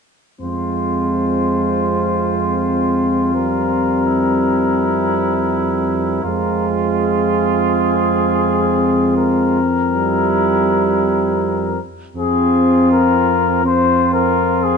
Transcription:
0.41 6.20 F2 soft
0.41 3.31 G#3 soft
0.41 6.20 C4 soft
0.41 4.08 F4 soft
0.41 3.31 C5 soft
3.35 6.20 G3 soft
3.35 6.66 A#4 soft
4.06 6.23 E4 soft
6.24 11.80 F2 soft
6.24 9.59 G#3 soft
6.24 11.80 C4 medium
6.24 9.59 F4 medium
6.97 9.13 G#4 medium
9.17 11.80 A#4 medium
9.90 11.79 G3 medium
9.90 11.79 E4 soft
12.15 14.77 F2 soft
12.15 13.60 C4 soft
12.15 13.61 C4 soft
12.15 13.61 F4 soft
12.15 12.88 G#4 medium
12.92 13.64 A#4 medium
13.64 14.77 C4 soft
13.64 14.77 F4 soft
13.64 14.13 C5 medium
14.14 14.65 A#4 medium
14.63 14.77 G#4 medium

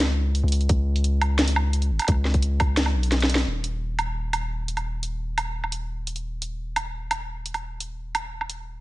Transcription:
0.00 0.43 C#2 loud
0.00 snare loud
0.00 closed hi-hat medium
0.35 open hi-hat soft
0.44 0.69 C#2 medium
0.48 closed hi-hat soft
0.48 open hi-hat medium
0.61 closed hi-hat soft
0.69 1.92 C#2 loud
0.69 kick loud
0.69 closed hi-hat medium
0.96 closed hi-hat soft
1.04 closed hi-hat medium
1.21 open hi-hat soft
1.21 low woodblock medium
1.39 snare loud
1.39 closed hi-hat medium
1.48 open hi-hat medium
1.56 low woodblock medium
1.73 closed hi-hat medium
1.82 closed hi-hat soft
1.91 1.99 G#1 medium
1.99 open hi-hat medium
1.99 low woodblock soft
2.02 low woodblock soft
2.04 low woodblock soft
2.07 2.97 C#2 loud
2.07 kick loud
2.07 closed hi-hat medium
2.07 low woodblock soft
2.12 low woodblock soft
2.25 snare soft
2.34 kick medium
2.34 closed hi-hat soft
2.42 closed hi-hat medium
2.60 kick loud
2.60 open hi-hat soft
2.60 low woodblock medium
2.77 snare loud
2.77 closed hi-hat medium
2.86 low woodblock soft
2.95 3.46 B1 loud
3.03 open hi-hat soft
3.12 snare medium
3.12 closed hi-hat medium
3.20 snare medium
3.20 closed hi-hat soft
3.30 open hi-hat medium
3.35 snare loud
3.35 closed hi-hat soft
3.47 8.80 D#1 medium
3.64 closed hi-hat medium
3.99 closed hi-hat medium
3.99 low woodblock medium
4.33 closed hi-hat medium
4.33 low woodblock medium
4.68 closed hi-hat medium
4.77 closed hi-hat soft
4.77 low woodblock soft
5.03 closed hi-hat medium
5.38 closed hi-hat medium
5.38 low woodblock medium
5.64 low woodblock soft
5.72 closed hi-hat medium
6.07 closed hi-hat medium
6.16 closed hi-hat soft
6.42 closed hi-hat medium
6.76 closed hi-hat medium
6.76 low woodblock medium
7.11 closed hi-hat medium
7.11 low woodblock medium
7.46 closed hi-hat medium
7.54 closed hi-hat soft
7.54 low woodblock soft
7.80 closed hi-hat medium
8.15 closed hi-hat medium
8.15 low woodblock medium
8.41 low woodblock soft
8.50 closed hi-hat medium

